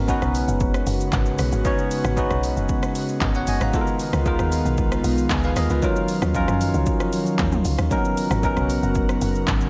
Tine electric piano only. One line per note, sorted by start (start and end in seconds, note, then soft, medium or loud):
0.00 0.08 B3 medium
0.00 0.08 C#4 medium
0.00 0.09 D#4 medium
0.00 0.10 F#4 medium
0.00 3.23 A#4 loud
0.08 0.92 B3 medium
0.08 0.92 C#4 medium
0.08 0.92 D#4 medium
0.08 0.93 F#4 medium
0.08 0.93 B4 loud
1.65 2.07 B3 medium
1.65 2.07 C#4 medium
1.65 2.07 D#4 medium
1.65 2.08 F#4 medium
1.65 2.08 C#5 loud
2.17 3.01 B3 medium
2.17 3.01 C#4 medium
2.17 3.01 D#4 medium
2.17 3.01 F#4 medium
2.17 3.02 B4 loud
3.22 3.35 A#4 medium
3.22 3.35 D#5 medium
3.36 3.48 C#5 medium
3.36 3.47 F#5 medium
3.48 3.61 D#5 medium
3.48 3.61 G#5 medium
3.62 3.87 F5 medium
3.62 3.86 A#5 medium
3.73 4.16 G#3 medium
3.73 4.16 B3 medium
3.73 4.16 D#4 medium
3.73 4.16 F4 medium
3.73 3.81 A4 medium
3.81 4.20 A#4 loud
4.25 5.09 G#3 medium
4.25 5.10 B3 medium
4.25 5.10 D#4 medium
4.25 5.10 F4 medium
4.25 5.10 A#4 loud
5.31 5.44 D#5 medium
5.31 5.43 G#5 medium
5.45 5.56 B4 medium
5.45 5.56 F5 medium
5.57 5.70 A#4 medium
5.57 5.70 D#5 medium
5.71 5.83 F4 medium
5.71 5.95 B4 medium
5.82 6.24 F#3 medium
5.82 6.25 C#4 medium
5.82 6.25 D#4 medium
5.82 6.25 F4 medium
5.82 6.25 A#4 loud
6.34 6.41 F3 medium
6.34 7.18 C#4 medium
6.34 7.19 D#4 medium
6.34 7.19 F4 medium
6.34 7.19 A#4 loud
6.40 7.21 F#3 medium
7.90 8.33 F#3 medium
7.90 7.98 A#3 medium
7.90 8.33 C#4 medium
7.90 8.34 D#4 medium
7.90 8.34 A#4 loud
7.97 8.36 B3 medium
8.43 9.27 F#3 medium
8.43 9.27 B3 medium
8.43 9.27 C#4 medium
8.43 9.28 D#4 medium
8.43 9.28 A#4 loud